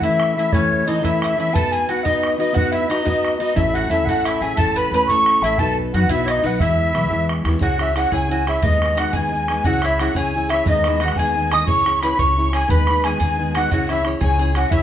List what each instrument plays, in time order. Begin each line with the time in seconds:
0.01 steel-string acoustic guitar A2 E3 A3 C#4 E4, mandolin E4, flute E5, accordion E5, bodhran
0.20 bodhran
0.35 steel-string acoustic guitar E3 A3 C#4 E4, mandolin E4, accordion E5, flute E5
0.52 steel-string acoustic guitar A2 E3 A3 C#4 E4, mandolin C#4, accordion C#5, flute C#5, bodhran
0.72 bodhran
0.85 steel-string acoustic guitar E3 A3 C#4 E4, mandolin D#4, accordion D#5, flute D#5
1.01 steel-string acoustic guitar A2 E3 A3 C#4 E4, mandolin E4, accordion E5, flute E5, bodhran
1.22 mandolin E4, flute E5, accordion E5, bodhran
1.36 steel-string acoustic guitar E3 A3 C#4 E4, mandolin E4, accordion E5, flute E5
1.52 steel-string acoustic guitar B3 D#4 F#4 B4, mandolin A4, flute A5, accordion A5, bodhran
1.72 mandolin G#4, flute G#5, accordion G#5, bodhran
1.88 steel-string acoustic guitar B3 D#4 F#4 B4, mandolin F#4, accordion F#5, flute F#5
2.04 steel-string acoustic guitar B3 D#4 F#4 B4, mandolin D#4, flute D#5, accordion D#5, bodhran
2.23 bodhran
2.38 steel-string acoustic guitar B3 D#4 F#4 B4, mandolin D#4, flute D#5, accordion D#5
2.53 steel-string acoustic guitar B3 D#4 F#4 B4, mandolin F#4, flute F#5, accordion F#5, bodhran
2.72 mandolin E4, flute E5, accordion E5, bodhran
2.88 steel-string acoustic guitar B3 D#4 F#4 B4, mandolin D#4, flute D#5, accordion D#5, bodhran
3.03 steel-string acoustic guitar B3 D#4 F#4 B4, mandolin D#4, flute D#5, accordion D#5, bodhran
3.25 bodhran
3.38 steel-string acoustic guitar B3 D#4 F#4 B4, mandolin D#4, flute D#5, accordion D#5
3.55 upright bass A1, steel-string acoustic guitar A2 A3 C#4 E4 A4, mandolin E4, flute E5, accordion E5, bodhran
3.74 mandolin F#4, flute F#5, accordion F#5, bodhran
3.90 upright bass E2, steel-string acoustic guitar A3 C#4 E4 A4, mandolin E4, flute E5, accordion E5
4.05 upright bass A1, steel-string acoustic guitar A2 A3 C#4 E4, mandolin F#4, flute F#5, accordion F#5, bodhran
4.10 steel-string acoustic guitar A4
4.25 mandolin E4, flute E5, accordion E5, bodhran
4.41 upright bass A1, steel-string acoustic guitar A3 C#4 E4 A4, mandolin G#4, flute G#5
4.56 upright bass A1, steel-string acoustic guitar A2 A3 C#4 E4, mandolin A4, flute A5, accordion A5, bodhran
4.60 steel-string acoustic guitar A4
4.75 mandolin B4, flute B5, accordion B5, bodhran
4.91 upright bass E2, steel-string acoustic guitar A3 C#4 E4 A4, mandolin B4, flute B5, accordion B5
5.07 upright bass A1, steel-string acoustic guitar A2 A3 C#4 E4 A4, mandolin C#5, flute C#6, accordion C#6, bodhran
5.26 bodhran
5.42 upright bass A1, steel-string acoustic guitar A3 C#4 E4 A4, mandolin E4, flute E5, accordion E5
5.58 upright bass B1, steel-string acoustic guitar B3 D#4 F#4 B4, mandolin A4, accordion A5, flute A5, bodhran
5.77 bodhran
5.94 upright bass F#2, steel-string acoustic guitar B3 D#4 F#4 B4, mandolin F#4, flute F#5, accordion F#5
6.09 upright bass B1, steel-string acoustic guitar B3 D#4 F#4 B4, mandolin E4, accordion E5, flute E5, bodhran
6.25 mandolin D#4, flute C#5, accordion D#5, bodhran
6.30 flute D#5
6.43 upright bass B1, steel-string acoustic guitar B3 D#4 F#4 B4, mandolin F#4, accordion F#5, flute F#5
6.60 upright bass E2, steel-string acoustic guitar E3 G#3 B3 E4, mandolin E4, accordion E5, flute E5, bodhran
6.79 bodhran
6.93 upright bass B1, steel-string acoustic guitar E3 G#3 B3 E4, bodhran
7.09 upright bass E2, steel-string acoustic guitar E3 G#3 B3 E4, bodhran
7.29 bodhran
7.45 upright bass D#2, steel-string acoustic guitar E3 G#3 B3 E4, bodhran
7.60 upright bass C#2, steel-string acoustic guitar C#4 E4 G#4 C#5, mandolin F#4, accordion F#5, bodhran
7.64 flute F#5
7.79 steel-string acoustic guitar C#4 E4 G#4 C#5, accordion E5, flute E5, bodhran
7.95 steel-string acoustic guitar C#4 E4 G#4 C#5, mandolin F#4, accordion F#5, flute F#5, bodhran
8.12 upright bass C#2, steel-string acoustic guitar C#4 E4 G#4 C#5, mandolin G#4, accordion G#5, bodhran
8.16 flute G#5
8.29 steel-string acoustic guitar C#4 E4 G#4 C#5, mandolin F#4
8.46 steel-string acoustic guitar C#4 E4 G#4 C#5, mandolin E4, accordion E5, flute E5, bodhran
8.62 upright bass D#2, steel-string acoustic guitar D#3 G#3 B3 D#4, mandolin D#4, accordion D#5, flute D#5, bodhran
8.81 steel-string acoustic guitar D#3 G#3 B3 D#4, bodhran
8.97 steel-string acoustic guitar D#3 G#3 B3 D#4, mandolin F#4, accordion F#5, flute F#5, bodhran
9.13 upright bass D#2, steel-string acoustic guitar D#3 G#3 B3 D#4, mandolin G#4, accordion G#5, flute G#5, bodhran
9.33 steel-string acoustic guitar D#3 G#3 B3 D#4
9.48 steel-string acoustic guitar D#3 G#3 B3 D#4, bodhran
9.64 upright bass C#2, steel-string acoustic guitar C#4 E4 G#4, mandolin F#4, accordion F#5, flute F#5, bodhran
9.68 steel-string acoustic guitar C#5
9.82 steel-string acoustic guitar C#4 E4 G#4 C#5, mandolin E4, accordion E5, flute E5, bodhran
9.99 steel-string acoustic guitar C#4 E4 G#4 C#5, mandolin F#4, accordion F#5, flute F#5, bodhran
10.15 upright bass C#2, steel-string acoustic guitar C#4 E4 G#4 C#5, mandolin G#4, flute G#5, accordion G#5, bodhran
10.35 steel-string acoustic guitar C#4 E4 G#4 C#5
10.49 steel-string acoustic guitar C#4 E4 G#4, mandolin E4, accordion E5, flute E5, bodhran
10.54 steel-string acoustic guitar C#5
10.66 upright bass D#2, steel-string acoustic guitar D#3 G#3, mandolin D#4, flute D#5, accordion D#5, bodhran
10.70 steel-string acoustic guitar B3 D#4
10.80 accordion D#5, bodhran
10.85 steel-string acoustic guitar D#3 G#3 B3 D#4, mandolin E4
10.93 accordion D#5
11.00 steel-string acoustic guitar D#3 G#3 B3, mandolin F#4, flute F#5, accordion F#5, bodhran
11.05 steel-string acoustic guitar D#4, bodhran
11.16 upright bass D#2, steel-string acoustic guitar D#3 G#3, mandolin G#4, flute G#5, accordion G#5, bodhran
11.20 steel-string acoustic guitar B3 D#4
11.30 accordion G#5
11.35 steel-string acoustic guitar D#3 G#3 B3 D#4
11.41 accordion G#5
11.51 steel-string acoustic guitar D#3 G#3 B3 D#4, mandolin D#5, accordion D#6, flute D#6, bodhran
11.66 steel-string acoustic guitar C#4 E4 G#4 C#5, mandolin C#5, accordion C#6, flute C#6, bodhran
11.85 steel-string acoustic guitar C#4 E4 G#4 C#5, bodhran
12.00 steel-string acoustic guitar C#4 E4, mandolin B4, accordion B5, flute B5, bodhran
12.04 steel-string acoustic guitar G#4 C#5
12.17 upright bass C#2, steel-string acoustic guitar C#4 E4 G#4 C#5, mandolin C#5, accordion C#6, flute C#6, bodhran
12.29 accordion C#6
12.37 steel-string acoustic guitar C#4 E4 G#4 C#5
12.41 accordion C#6
12.52 steel-string acoustic guitar C#4 E4 G#4 C#5, mandolin G#4, flute G#5, accordion G#5, bodhran
12.67 upright bass D#2, steel-string acoustic guitar D#3 G#3 B3 D#4, mandolin B4, accordion B5, flute B5, bodhran
12.87 steel-string acoustic guitar D#3 G#3 B3 D#4, bodhran
13.04 steel-string acoustic guitar D#3 G#3 B3 D#4, mandolin G#4, accordion G#5, flute G#5, bodhran
13.19 upright bass D#2, steel-string acoustic guitar D#3 G#3 B3 D#4, mandolin G#4, accordion G#5, flute G#5, bodhran
13.38 steel-string acoustic guitar D#3 G#3 B3 D#4
13.54 steel-string acoustic guitar D#3 G#3 B3 D#4, mandolin F#4, accordion F#5, flute F#5, bodhran
13.71 upright bass C#2, steel-string acoustic guitar C#4 E4 G#4 C#5, mandolin F#4, accordion F#5, flute F#5, bodhran
13.89 steel-string acoustic guitar C#4 E4 G#4 C#5, mandolin E4, flute E5, accordion E5, bodhran
14.04 steel-string acoustic guitar C#4 E4 G#4 C#5, bodhran
14.21 upright bass C#2, steel-string acoustic guitar C#4 E4 G#4 C#5, mandolin G#4, flute G#5, accordion G#5, bodhran
14.38 steel-string acoustic guitar C#4 E4 G#4 C#5, mandolin G#4
14.55 steel-string acoustic guitar C#4 E4 G#4 C#5, mandolin F#4, flute F#5, accordion F#5, bodhran
14.71 upright bass C#2, steel-string acoustic guitar C#4 E4 G#4 C#5, mandolin E4, flute E5, accordion E5, bodhran